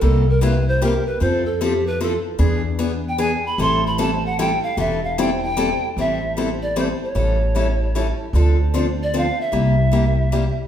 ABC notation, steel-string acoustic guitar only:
X:1
M:3/4
L:1/8
Q:"Swing" 1/4=152
K:Am
V:1 name="Steel-string acoustic guitar"
[C,G,_B,EG] z [C,G,B,EG] z [C,G,B,EG] z | [F,CEA] z [F,CEA] z [F,CEA] z | [E,B,D^G] z [E,B,DG] z [E,B,DG] z | [E,G,CEA] z [E,G,CEA] z [E,G,CEA] z |
[E,G,CEA] z [E,G,CEA] z [E,G,CEA] z | [E,G,CEA] z [E,G,CEA] z [E,G,CEA] z | [E,G,^CEA] z [E,G,CEA] z [E,G,CEA] z | [D,F,CDA] z [D,F,CDA] z [D,F,CDA] z |
[C,G,_B,EG] z [C,G,B,EG] z [C,G,B,EG] z |]